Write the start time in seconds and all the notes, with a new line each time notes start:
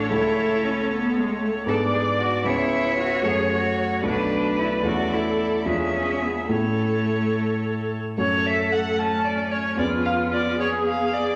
Already playing: A1 A3 C#4 D4 A4 C#5
0.10 C#2 A3 C#4 E4 A4
0.64 C#4
0.91 B3
1.17 G#3
1.41 A3
1.66 G#2 B3 D4 G#4 A4 D5
1.94 G#4
2.18 F#4
2.44 C#2 B3 C#4 E4 G#4 C#5 E5
2.99 F#4
3.22 F#2 A3 C#4 F#4 C#5
3.27 G#4
3.53 F#4
4.03 B1 A3 D4 F#4 B4 D5
4.59 E4
4.83 E2 A3 C#4 E4 F#4 A4
5.13 E4
5.65 E2 G#3 C#4 D4 F4 G#4 E5
6.23 B3
6.48 A2 A3 C#4 E4 A4 C#5
8.17 F#2 A3 C#4 F#4 A4 C#5
8.46 E5
8.72 F#5
8.99 C#4 A5
9.24 D5
9.51 C#5
9.77 F2 B3 C#4 F4 G#4 D5
10.05 F5
10.33 D5
10.59 G#4 C#5
10.87 F5
11.13 D5